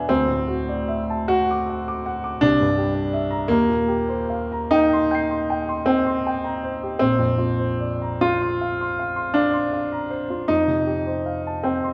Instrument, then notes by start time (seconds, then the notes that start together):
grand piano
Already playing: E2 B2 D4 F#4 B4 E5 G#5
0.09 D2 C4
0.27 A2
0.48 F#4
0.68 D5
0.88 E5
1.10 A5
1.28 F#4 F#5
1.51 D6
1.70 F#5
1.88 D6
2.06 F#5
2.24 D6
2.41 C2 D4
2.60 G2
2.78 G4
2.94 D5
3.13 E5
3.31 A#5
3.48 D#2 A#3
3.69 A#2
3.88 G4
4.09 C5
4.30 F5
4.52 A#5
4.71 D#4 G5
4.93 C6
5.11 G5 G6 C7
5.31 C6
5.50 G5
5.69 C6
5.86 C4 G5
6.07 C6
6.27 G5
6.44 A#5
6.64 C5
6.83 G4
6.99 A#1 C4
7.18 F2
7.38 F4
7.59 C5
7.80 D5
8.02 A#5
8.21 F4 F5
8.42 C6
8.61 F5
8.81 C6
8.99 F5
9.16 C6
9.34 D4 F5
9.54 C6
9.73 F5
9.92 A#5
10.10 C5
10.30 F4
10.48 F2 D#4
10.67 C3
10.87 G4
11.07 C5
11.26 F5
11.47 A5
11.63 C4 G5
11.84 C6